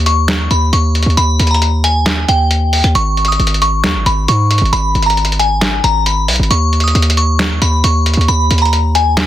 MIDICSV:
0, 0, Header, 1, 4, 480
1, 0, Start_track
1, 0, Key_signature, 5, "minor"
1, 0, Tempo, 444444
1, 1267, Time_signature, 4, 2, 24, 8
1, 10007, End_track
2, 0, Start_track
2, 0, Title_t, "Synth bell"
2, 0, Program_c, 0, 98
2, 68, Note_on_c, 0, 85, 80
2, 519, Note_off_c, 0, 85, 0
2, 548, Note_on_c, 0, 83, 84
2, 760, Note_off_c, 0, 83, 0
2, 787, Note_on_c, 0, 85, 77
2, 1238, Note_off_c, 0, 85, 0
2, 1267, Note_on_c, 0, 83, 108
2, 1605, Note_off_c, 0, 83, 0
2, 1628, Note_on_c, 0, 82, 73
2, 1734, Note_off_c, 0, 82, 0
2, 1986, Note_on_c, 0, 80, 76
2, 2438, Note_off_c, 0, 80, 0
2, 2468, Note_on_c, 0, 79, 79
2, 3144, Note_off_c, 0, 79, 0
2, 3189, Note_on_c, 0, 85, 103
2, 3526, Note_off_c, 0, 85, 0
2, 3544, Note_on_c, 0, 87, 69
2, 3652, Note_off_c, 0, 87, 0
2, 3907, Note_on_c, 0, 85, 78
2, 4358, Note_off_c, 0, 85, 0
2, 4386, Note_on_c, 0, 83, 84
2, 4600, Note_off_c, 0, 83, 0
2, 4628, Note_on_c, 0, 85, 83
2, 5079, Note_off_c, 0, 85, 0
2, 5105, Note_on_c, 0, 83, 110
2, 5444, Note_off_c, 0, 83, 0
2, 5467, Note_on_c, 0, 82, 77
2, 5573, Note_off_c, 0, 82, 0
2, 5826, Note_on_c, 0, 80, 77
2, 6278, Note_off_c, 0, 80, 0
2, 6307, Note_on_c, 0, 82, 92
2, 6520, Note_off_c, 0, 82, 0
2, 6546, Note_on_c, 0, 83, 88
2, 6998, Note_off_c, 0, 83, 0
2, 7026, Note_on_c, 0, 85, 107
2, 7365, Note_off_c, 0, 85, 0
2, 7384, Note_on_c, 0, 87, 73
2, 7492, Note_off_c, 0, 87, 0
2, 7748, Note_on_c, 0, 85, 83
2, 8199, Note_off_c, 0, 85, 0
2, 8228, Note_on_c, 0, 83, 85
2, 8440, Note_off_c, 0, 83, 0
2, 8468, Note_on_c, 0, 85, 78
2, 8918, Note_off_c, 0, 85, 0
2, 8948, Note_on_c, 0, 83, 108
2, 9286, Note_off_c, 0, 83, 0
2, 9308, Note_on_c, 0, 82, 75
2, 9414, Note_off_c, 0, 82, 0
2, 9667, Note_on_c, 0, 80, 76
2, 10007, Note_off_c, 0, 80, 0
2, 10007, End_track
3, 0, Start_track
3, 0, Title_t, "808-style bass"
3, 0, Program_c, 1, 38
3, 0, Note_on_c, 1, 39, 105
3, 518, Note_off_c, 1, 39, 0
3, 547, Note_on_c, 1, 39, 102
3, 777, Note_off_c, 1, 39, 0
3, 787, Note_on_c, 1, 39, 103
3, 1132, Note_off_c, 1, 39, 0
3, 1148, Note_on_c, 1, 39, 99
3, 1262, Note_off_c, 1, 39, 0
3, 1267, Note_on_c, 1, 39, 106
3, 1497, Note_off_c, 1, 39, 0
3, 1507, Note_on_c, 1, 39, 102
3, 2429, Note_off_c, 1, 39, 0
3, 2468, Note_on_c, 1, 39, 99
3, 3043, Note_off_c, 1, 39, 0
3, 3067, Note_on_c, 1, 39, 100
3, 3182, Note_off_c, 1, 39, 0
3, 3187, Note_on_c, 1, 32, 112
3, 3648, Note_off_c, 1, 32, 0
3, 3666, Note_on_c, 1, 32, 103
3, 4147, Note_on_c, 1, 39, 93
3, 4163, Note_off_c, 1, 32, 0
3, 4266, Note_on_c, 1, 32, 98
3, 4283, Note_off_c, 1, 39, 0
3, 4380, Note_off_c, 1, 32, 0
3, 4386, Note_on_c, 1, 32, 100
3, 4617, Note_off_c, 1, 32, 0
3, 4627, Note_on_c, 1, 44, 106
3, 4972, Note_off_c, 1, 44, 0
3, 4986, Note_on_c, 1, 32, 96
3, 5099, Note_off_c, 1, 32, 0
3, 5105, Note_on_c, 1, 32, 114
3, 5336, Note_off_c, 1, 32, 0
3, 5346, Note_on_c, 1, 32, 103
3, 6268, Note_off_c, 1, 32, 0
3, 6306, Note_on_c, 1, 32, 103
3, 6786, Note_on_c, 1, 35, 96
3, 6802, Note_off_c, 1, 32, 0
3, 6900, Note_off_c, 1, 35, 0
3, 6907, Note_on_c, 1, 32, 99
3, 7019, Note_off_c, 1, 32, 0
3, 7026, Note_on_c, 1, 39, 114
3, 7487, Note_off_c, 1, 39, 0
3, 7506, Note_on_c, 1, 39, 108
3, 8197, Note_off_c, 1, 39, 0
3, 8226, Note_on_c, 1, 39, 101
3, 8457, Note_off_c, 1, 39, 0
3, 8466, Note_on_c, 1, 39, 105
3, 8812, Note_off_c, 1, 39, 0
3, 8827, Note_on_c, 1, 39, 100
3, 8942, Note_off_c, 1, 39, 0
3, 8947, Note_on_c, 1, 39, 113
3, 9177, Note_off_c, 1, 39, 0
3, 9187, Note_on_c, 1, 39, 102
3, 10007, Note_off_c, 1, 39, 0
3, 10007, End_track
4, 0, Start_track
4, 0, Title_t, "Drums"
4, 67, Note_on_c, 9, 42, 80
4, 175, Note_off_c, 9, 42, 0
4, 307, Note_on_c, 9, 38, 124
4, 307, Note_on_c, 9, 42, 85
4, 315, Note_on_c, 9, 39, 99
4, 415, Note_off_c, 9, 38, 0
4, 415, Note_off_c, 9, 42, 0
4, 423, Note_off_c, 9, 39, 0
4, 547, Note_on_c, 9, 42, 73
4, 655, Note_off_c, 9, 42, 0
4, 787, Note_on_c, 9, 42, 86
4, 895, Note_off_c, 9, 42, 0
4, 1027, Note_on_c, 9, 42, 70
4, 1107, Note_off_c, 9, 42, 0
4, 1107, Note_on_c, 9, 42, 54
4, 1188, Note_off_c, 9, 42, 0
4, 1188, Note_on_c, 9, 42, 42
4, 1267, Note_off_c, 9, 42, 0
4, 1267, Note_on_c, 9, 42, 77
4, 1375, Note_off_c, 9, 42, 0
4, 1507, Note_on_c, 9, 42, 81
4, 1587, Note_off_c, 9, 42, 0
4, 1587, Note_on_c, 9, 42, 63
4, 1667, Note_off_c, 9, 42, 0
4, 1667, Note_on_c, 9, 42, 47
4, 1747, Note_off_c, 9, 42, 0
4, 1747, Note_on_c, 9, 42, 71
4, 1855, Note_off_c, 9, 42, 0
4, 1987, Note_on_c, 9, 42, 80
4, 2095, Note_off_c, 9, 42, 0
4, 2227, Note_on_c, 9, 38, 120
4, 2227, Note_on_c, 9, 42, 84
4, 2235, Note_on_c, 9, 39, 96
4, 2335, Note_off_c, 9, 38, 0
4, 2335, Note_off_c, 9, 42, 0
4, 2343, Note_off_c, 9, 39, 0
4, 2467, Note_on_c, 9, 42, 74
4, 2575, Note_off_c, 9, 42, 0
4, 2707, Note_on_c, 9, 42, 86
4, 2815, Note_off_c, 9, 42, 0
4, 2947, Note_on_c, 9, 42, 43
4, 2947, Note_on_c, 9, 46, 75
4, 3055, Note_off_c, 9, 42, 0
4, 3055, Note_off_c, 9, 46, 0
4, 3067, Note_on_c, 9, 42, 73
4, 3175, Note_off_c, 9, 42, 0
4, 3188, Note_on_c, 9, 42, 80
4, 3296, Note_off_c, 9, 42, 0
4, 3427, Note_on_c, 9, 42, 47
4, 3507, Note_off_c, 9, 42, 0
4, 3507, Note_on_c, 9, 42, 53
4, 3587, Note_off_c, 9, 42, 0
4, 3587, Note_on_c, 9, 42, 61
4, 3667, Note_off_c, 9, 42, 0
4, 3667, Note_on_c, 9, 42, 67
4, 3747, Note_off_c, 9, 42, 0
4, 3747, Note_on_c, 9, 42, 73
4, 3827, Note_off_c, 9, 42, 0
4, 3827, Note_on_c, 9, 42, 77
4, 3907, Note_off_c, 9, 42, 0
4, 3907, Note_on_c, 9, 42, 79
4, 4015, Note_off_c, 9, 42, 0
4, 4146, Note_on_c, 9, 38, 121
4, 4146, Note_on_c, 9, 42, 85
4, 4154, Note_on_c, 9, 39, 99
4, 4254, Note_off_c, 9, 38, 0
4, 4254, Note_off_c, 9, 42, 0
4, 4262, Note_off_c, 9, 39, 0
4, 4387, Note_on_c, 9, 42, 77
4, 4495, Note_off_c, 9, 42, 0
4, 4626, Note_on_c, 9, 42, 87
4, 4734, Note_off_c, 9, 42, 0
4, 4866, Note_on_c, 9, 42, 71
4, 4946, Note_off_c, 9, 42, 0
4, 4946, Note_on_c, 9, 42, 56
4, 5026, Note_off_c, 9, 42, 0
4, 5026, Note_on_c, 9, 42, 43
4, 5106, Note_off_c, 9, 42, 0
4, 5106, Note_on_c, 9, 42, 75
4, 5214, Note_off_c, 9, 42, 0
4, 5347, Note_on_c, 9, 42, 48
4, 5427, Note_off_c, 9, 42, 0
4, 5427, Note_on_c, 9, 42, 54
4, 5507, Note_off_c, 9, 42, 0
4, 5507, Note_on_c, 9, 42, 63
4, 5587, Note_off_c, 9, 42, 0
4, 5587, Note_on_c, 9, 42, 66
4, 5667, Note_off_c, 9, 42, 0
4, 5667, Note_on_c, 9, 42, 70
4, 5747, Note_off_c, 9, 42, 0
4, 5747, Note_on_c, 9, 42, 80
4, 5827, Note_off_c, 9, 42, 0
4, 5827, Note_on_c, 9, 42, 81
4, 5935, Note_off_c, 9, 42, 0
4, 6067, Note_on_c, 9, 38, 126
4, 6067, Note_on_c, 9, 42, 85
4, 6075, Note_on_c, 9, 39, 94
4, 6175, Note_off_c, 9, 38, 0
4, 6175, Note_off_c, 9, 42, 0
4, 6183, Note_off_c, 9, 39, 0
4, 6306, Note_on_c, 9, 42, 77
4, 6414, Note_off_c, 9, 42, 0
4, 6546, Note_on_c, 9, 42, 88
4, 6654, Note_off_c, 9, 42, 0
4, 6786, Note_on_c, 9, 42, 70
4, 6786, Note_on_c, 9, 46, 78
4, 6866, Note_off_c, 9, 42, 0
4, 6866, Note_on_c, 9, 42, 57
4, 6894, Note_off_c, 9, 46, 0
4, 6946, Note_off_c, 9, 42, 0
4, 6946, Note_on_c, 9, 42, 41
4, 7026, Note_off_c, 9, 42, 0
4, 7026, Note_on_c, 9, 42, 75
4, 7134, Note_off_c, 9, 42, 0
4, 7266, Note_on_c, 9, 42, 47
4, 7346, Note_off_c, 9, 42, 0
4, 7346, Note_on_c, 9, 42, 54
4, 7426, Note_off_c, 9, 42, 0
4, 7426, Note_on_c, 9, 42, 60
4, 7506, Note_off_c, 9, 42, 0
4, 7506, Note_on_c, 9, 42, 68
4, 7586, Note_off_c, 9, 42, 0
4, 7586, Note_on_c, 9, 42, 74
4, 7666, Note_off_c, 9, 42, 0
4, 7666, Note_on_c, 9, 42, 77
4, 7746, Note_off_c, 9, 42, 0
4, 7746, Note_on_c, 9, 42, 81
4, 7854, Note_off_c, 9, 42, 0
4, 7986, Note_on_c, 9, 38, 126
4, 7986, Note_on_c, 9, 42, 86
4, 7994, Note_on_c, 9, 39, 98
4, 8094, Note_off_c, 9, 38, 0
4, 8094, Note_off_c, 9, 42, 0
4, 8102, Note_off_c, 9, 39, 0
4, 8226, Note_on_c, 9, 42, 78
4, 8334, Note_off_c, 9, 42, 0
4, 8466, Note_on_c, 9, 42, 86
4, 8574, Note_off_c, 9, 42, 0
4, 8706, Note_on_c, 9, 42, 72
4, 8786, Note_off_c, 9, 42, 0
4, 8786, Note_on_c, 9, 42, 56
4, 8866, Note_off_c, 9, 42, 0
4, 8866, Note_on_c, 9, 42, 43
4, 8946, Note_off_c, 9, 42, 0
4, 8946, Note_on_c, 9, 42, 77
4, 9054, Note_off_c, 9, 42, 0
4, 9186, Note_on_c, 9, 42, 80
4, 9266, Note_off_c, 9, 42, 0
4, 9266, Note_on_c, 9, 42, 62
4, 9347, Note_off_c, 9, 42, 0
4, 9347, Note_on_c, 9, 42, 47
4, 9427, Note_off_c, 9, 42, 0
4, 9427, Note_on_c, 9, 42, 70
4, 9535, Note_off_c, 9, 42, 0
4, 9667, Note_on_c, 9, 42, 80
4, 9775, Note_off_c, 9, 42, 0
4, 9906, Note_on_c, 9, 38, 120
4, 9907, Note_on_c, 9, 42, 85
4, 9915, Note_on_c, 9, 39, 96
4, 10007, Note_off_c, 9, 38, 0
4, 10007, Note_off_c, 9, 39, 0
4, 10007, Note_off_c, 9, 42, 0
4, 10007, End_track
0, 0, End_of_file